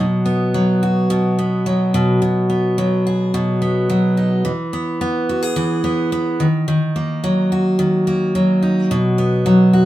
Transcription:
Already playing: F#3 F#4
0.00 B2
0.26 B3
0.54 F#3
0.83 F#4
1.10 B2
1.39 B3
1.66 F#3
1.94 B2
2.22 B2
2.50 B3
2.78 F#3
3.07 G#4
3.34 B2
3.62 B3
3.90 F#3
4.17 D#4
4.45 E3
4.73 B3
5.01 B3
5.29 F#4
5.43 G#4
5.56 E3
5.84 B3
6.12 B3
6.40 D#3
6.68 D#3
6.96 A#3
7.24 F#3
7.52 F#4
7.79 D#3
8.07 A#3
8.35 F#3
8.63 D#4
8.91 B2
9.18 B3
9.46 F#3
9.73 F#4

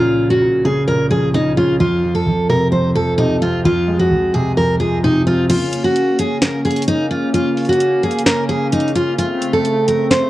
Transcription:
Already playing: A#2 C#3 F3 C#4 F4
0.30 F#4
0.42 A#2
0.65 C#3 G#4
0.88 A#2 A#4
1.11 F3 G#4
1.34 C#3 D#4
1.57 C#4 F4
1.80 F2 F4
2.03 F3
2.15 A4
2.27 F2
2.49 C3 A#4
2.72 F2 C5
2.96 F3 A4
3.18 C3 D#4
3.42 C4 F4
3.65 F2 F4
3.88 G#3
3.99 F#4
4.11 F2
4.34 C3 G#4
4.57 F2 A#4
4.80 F3 G#4
5.03 C3 D#4
5.26 C4 F4
5.50 C#3 A#3 C#4 F4, closed hi-hat, crash
5.73 closed hi-hat
5.84 F#4
5.96 closed hi-hat
6.19 G#4, closed hi-hat
6.42 A#4, snare, closed hi-hat
6.65 G#4, closed hi-hat
6.71 closed hi-hat
6.76 closed hi-hat
6.82 closed hi-hat
6.88 D#4, closed hi-hat
7.11 F4
7.34 F4, closed hi-hat
7.57 closed hi-hat, open hi-hat
7.65 F#4, closed hi-hat
7.73 closed hi-hat
7.80 closed hi-hat
8.03 G#4, closed hi-hat
8.11 closed hi-hat
8.19 closed hi-hat
8.26 A#4, snare, closed hi-hat
8.49 G#4
8.73 D#4, closed hi-hat
8.80 closed hi-hat
8.88 closed hi-hat
8.96 F4, closed hi-hat
9.19 A3 C4 F4, closed hi-hat
9.42 closed hi-hat
9.53 A4
9.65 closed hi-hat
9.88 A#4, closed hi-hat
10.11 C5, snare, closed hi-hat

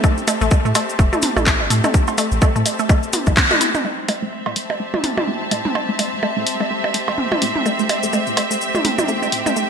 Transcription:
Already playing: C4 G4 E5 A5
0.04 A3, kick, percussion blips, cabasa
0.18 cabasa
0.27 A3, open hi-hat, percussion blips, cabasa
0.41 A1 A3, cabasa
0.51 kick, percussion blips, cabasa
0.65 A2 A3, cabasa
0.75 A3, open hi-hat, cowbell, percussion blips, cabasa
0.89 cabasa
0.99 E1 A3, kick, cabasa
1.13 A3, high tom, percussion blips, cabasa
1.22 open hi-hat, mid tom, cabasa
1.36 A1 A3, high tom, percussion blips, cabasa
1.46 A3, kick, clap, cabasa
1.60 G1, percussion blips
1.70 A2 A3, open hi-hat, cabasa
1.84 A3, mid tom, percussion blips, cabasa
1.94 kick, cabasa
2.07 A3, cowbell, cabasa
2.18 A3, open hi-hat, percussion blips, cabasa
2.32 A1, cabasa
2.42 A3, kick, percussion blips, cabasa
2.56 A2 A3, cabasa
2.66 open hi-hat, percussion blips, cabasa
2.79 A3, cabasa
2.89 A3, kick, percussion blips, cabasa
3.03 cabasa
3.13 B3, open hi-hat, high tom, cabasa
3.26 B1 E3, kick, percussion blips, cabasa
3.36 kick, clap, mid tom, cowbell, cabasa
3.50 A3, high tom, percussion blips, cabasa
3.61 E4, open hi-hat, cabasa
3.74 mid tom, percussion blips, cabasa
3.85 A3 C4, percussion blips
4.08 A3 E5, open hi-hat, percussion blips
4.22 A1 A3
4.46 A2 A3 G4, cowbell, percussion blips
4.56 A3, open hi-hat
4.62 A5
4.70 percussion blips
4.80 E1 A3
4.94 A3, high tom, percussion blips
5.04 open hi-hat, mid tom
5.17 A1 A3, high tom, percussion blips
5.28 A3
5.41 G1
5.51 A2 A3, open hi-hat, percussion blips
5.65 A3, mid tom
5.75 cowbell, percussion blips
5.89 A3
5.99 A3, open hi-hat, percussion blips
6.13 A1
6.23 A3, percussion blips
6.36 A2 A3
6.47 open hi-hat
6.60 A3, percussion blips
6.70 E1 A3
6.84 percussion blips
6.94 A3, open hi-hat
7.08 A1 A3, cowbell, percussion blips
7.18 mid tom
7.32 G1 A3, high tom, percussion blips
7.42 A2 A3, open hi-hat
7.56 mid tom
7.66 A3, percussion blips, cabasa
7.79 A3, cabasa
7.89 open hi-hat, percussion blips
7.99 A1 A3 G5, cabasa
8.13 A3, percussion blips, cabasa
8.27 A2, cabasa
8.37 A3, open hi-hat, cowbell, percussion blips
8.51 A3, cabasa
8.61 E1, cabasa
8.75 A3, high tom, percussion blips, cabasa
8.85 A3, open hi-hat, mid tom
8.98 A1, high tom, percussion blips, cabasa
9.08 A3, cabasa
9.22 G1 A3, percussion blips, cabasa
9.32 A2, open hi-hat
9.46 A3, mid tom, percussion blips, cabasa
9.56 A3, cabasa

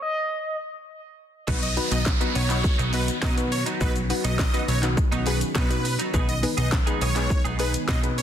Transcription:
0.02 D#5
1.47 B1 D#3 F#3 B3 D#4 F#4 B4, kick, crash, downlifter, shaker
1.62 D#5, muted clean electric guitar stroke, closed hi-hat, shaker
1.77 B3 D#4 F#4 B4, muted clean electric guitar stroke, open hi-hat, shaker
1.91 B1 F#3 B3 D#4 D#5, closed hi-hat, shaker
2.06 muted clean electric guitar stroke, kick, snare, clap, shaker
2.20 F#3 B3 D#4 F#4 B4, closed hi-hat, shaker
2.35 B1 F#3 B3 D#4 C#5, open hi-hat, shaker
2.50 B3 D#4 F#4 B4, muted clean electric guitar stroke, clap, closed hi-hat, shaker
2.64 muted clean electric guitar stroke, kick, shaker
2.78 B1 F#3 B3 D#4, closed hi-hat, shaker
2.93 F#3 B3 D#4 F#4 B4, clap, open hi-hat, shaker
3.08 muted clean electric guitar stroke, closed hi-hat, shaker
3.22 B2 F#3 B3 D#4 D#5, kick, snare, clap, shaker
3.37 B3 D#4 F#4 B4, muted clean electric guitar stroke, closed hi-hat, shaker
3.52 C#5, muted clean electric guitar stroke, open hi-hat, shaker
3.66 F#3 B3 D#4, closed hi-hat, shaker
3.80 B1 F#3 B3 C#4 D#4 F#4 B4, kick, shaker
3.95 muted clean electric guitar stroke, closed hi-hat, shaker
4.10 B3 D#4 F#4 B4, muted clean electric guitar stroke, open hi-hat, shaker
4.24 B1 F#3 B3 D#4 D#5, closed hi-hat, shaker
4.39 D#5, kick, snare, clap, shaker
4.53 F#3 B3 D#4 F#4 B4, closed hi-hat, shaker
4.68 B1 F#3 B3 D#4 C#5, open hi-hat, shaker
4.83 B3 D#4 F#4 B4, muted clean electric guitar stroke, clap, closed hi-hat, shaker
4.97 muted clean electric guitar stroke, kick, shaker
5.12 B1 F#3 B3 D#4, closed hi-hat, shaker
5.26 F#3 B3 D#4 F#4 G#4 B4, clap, open hi-hat, shaker
5.41 muted clean electric guitar stroke, closed hi-hat, shaker
5.55 B2 F#3 B3 D#4 B4, kick, snare, clap, shaker
5.70 B3 D#4 F#4 B4, muted clean electric guitar stroke, closed hi-hat, shaker
5.84 muted clean electric guitar stroke, open hi-hat, shaker
5.99 F#3 B3 D#4, closed hi-hat, shaker
6.13 B1 G#3 B3 D#4 G#4 B4, kick, shaker
6.28 D#5, muted clean electric guitar stroke, closed hi-hat, shaker
6.43 B3 D#4 G#4 B4, muted clean electric guitar stroke, open hi-hat, shaker
6.57 B1 B3 D#4 G#4 D#5, closed hi-hat, shaker
6.72 kick, snare, clap, shaker
6.86 B3 D#4 G#4 B4, closed hi-hat, shaker
7.01 B1 B3 D#4 G#4 C#5, open hi-hat, shaker
7.15 B3 D#4 G#4 B4, muted clean electric guitar stroke, clap, closed hi-hat, shaker
7.30 muted clean electric guitar stroke, kick, shaker
7.44 B1 B3 D#4 G#4, closed hi-hat, shaker
7.59 B3 D#4 G#4 B4, clap, open hi-hat, shaker
7.74 muted clean electric guitar stroke, closed hi-hat, shaker
7.88 B2 B3 D#4 G#4 D#5, kick, snare, clap, shaker
8.03 B3 D#4 G#4 B4, muted clean electric guitar stroke, closed hi-hat, shaker
8.17 C#5, muted clean electric guitar stroke, open hi-hat, shaker

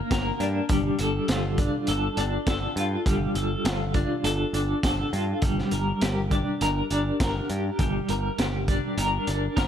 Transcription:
Already playing: A#3 D4 A#4
0.11 G1 A#4, kick, snare, closed hi-hat
0.40 G2 D4, closed hi-hat
0.69 G1 G3, kick, closed hi-hat
0.99 G1 A4, closed hi-hat
1.28 G1 F4, snare, closed hi-hat
1.58 D4, kick, closed hi-hat
1.87 G1 A4, closed hi-hat
2.17 G1 D4, closed hi-hat
2.47 G1 A4, kick, snare, closed hi-hat
2.76 G2 F4, closed hi-hat
3.06 G1 G3, kick, closed hi-hat
3.35 G1 A4, closed hi-hat
3.65 G1 F4, snare, closed hi-hat
3.94 D4, kick, closed hi-hat
4.24 G1 A4, closed hi-hat
4.53 G1 D4, closed hi-hat
4.83 G1 A4, kick, snare, closed hi-hat
5.13 G2 F4, closed hi-hat
5.42 G1 G3, kick, closed hi-hat
5.58 snare
5.71 G1 A#4, closed hi-hat
6.01 G1 G4, snare, closed hi-hat
6.31 D4, kick, closed hi-hat
6.61 G1 A#4, closed hi-hat
6.90 G1 D4, closed hi-hat
7.20 G1 A#4, kick, snare, closed hi-hat
7.50 G2 G4, closed hi-hat
7.79 G1 G3, kick, closed hi-hat
8.09 G1 A#4, closed hi-hat
8.39 G1 G4, snare, closed hi-hat
8.68 D4, kick, closed hi-hat
8.97 G1 A#4, closed hi-hat
9.27 G1 D4, closed hi-hat
9.56 G1 A#4, kick, snare, closed hi-hat

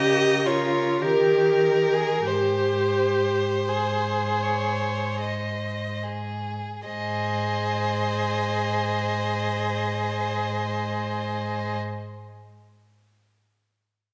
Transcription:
Already playing: C#3 G4 A#4 D#5
0.46 F4 A#4 C#5
1.01 D#3 G4 A#4
1.94 G#4
2.26 G#2 G4 C5
3.67 G#4 C5
4.43 C#5
5.21 D#5
6.03 G#4
6.87 G#2 G#4 C5 D#5

